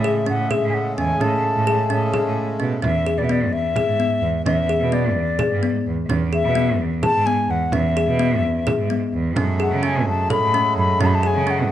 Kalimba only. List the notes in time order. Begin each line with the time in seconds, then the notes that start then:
0.04 G#4
0.26 C#4
0.51 G#4
0.98 C#4
1.21 C#4
1.67 G#4
1.90 C#4
2.14 G#4
2.60 C#4
2.82 C#4
3.06 G#4
3.29 B3
3.76 G#4
4.00 B3
4.46 C#4
4.69 G#4
4.92 B3
5.39 G#4
5.63 B3
6.10 C#4
6.33 G#4
6.55 B3
7.03 G#4
7.27 B3
7.73 C#4
7.97 G#4
8.19 B3
8.67 G#4
8.90 B3
9.37 C#4
9.60 G#4
9.83 C#4
10.30 A4
10.54 C#4
11.01 C#4
11.23 G#4
11.47 C#4